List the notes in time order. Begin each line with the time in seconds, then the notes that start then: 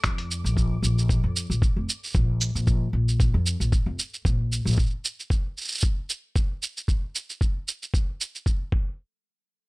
Already playing: A3 D6
0.04 F2, finger snap, kick, closed hi-hat, cabasa
0.18 closed hi-hat
0.31 cabasa
0.44 A#1, cabasa
0.57 kick, cabasa
0.82 A#1, cabasa
0.98 cabasa
1.09 kick, cabasa
1.24 F2
1.36 cabasa
1.50 A#1, cabasa
1.62 kick, cabasa
1.76 F1
1.89 cabasa
2.04 cabasa
2.06 cabasa
2.08 cabasa
2.10 cabasa
2.12 kick, cabasa
2.15 A#1, cabasa
2.41 cabasa
2.55 A#1, cabasa
2.67 kick, cabasa
2.93 A#1
3.08 cabasa
3.20 kick, cabasa
3.34 F2
3.46 cabasa
3.60 A#1, cabasa
3.72 kick, cabasa
3.86 F1
3.99 cabasa
4.14 cabasa
4.25 A#1, kick, cabasa
4.52 cabasa
4.65 A#1, cabasa
4.70 cabasa
4.72 cabasa
4.76 kick, cabasa
4.79 cabasa
4.82 cabasa
4.86 cabasa
4.90 cabasa
5.05 cabasa
5.20 cabasa
5.30 kick, cabasa
5.57 cabasa
5.61 cabasa
5.65 cabasa
5.68 cabasa
5.72 cabasa
5.74 cabasa
5.77 cabasa
5.80 kick, cabasa
5.83 cabasa
6.10 cabasa
6.36 kick, cabasa
6.62 cabasa
6.77 cabasa
6.88 kick, cabasa
7.15 cabasa
7.30 cabasa
7.41 kick, cabasa
7.68 cabasa
7.83 cabasa
7.94 kick, cabasa
8.21 cabasa
8.35 cabasa
8.46 kick, cabasa
8.72 kick